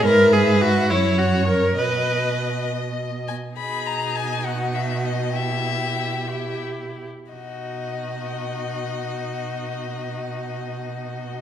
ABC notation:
X:1
M:6/8
L:1/16
Q:3/8=66
K:B
V:1 name="Violin"
B6 c6 | d8- d z g2 | b2 a2 g2 f2 e2 d2 | e8 z4 |
d12- | d12 |]
V:2 name="Violin"
e6 c6 | d8- d2 z2 | G6 F6 | =G6 E4 z2 |
F12- | F12 |]
V:3 name="Viola"
A2 G2 F2 E2 F2 A2 | B6 z6 | D12 | E6 =G4 z2 |
D12- | D12 |]
V:4 name="Cello" clef=bass
G,,6 F,,6 | B,,8- B,,2 z2 | B,,12- | B,,8- B,,2 z2 |
B,,12- | B,,12 |]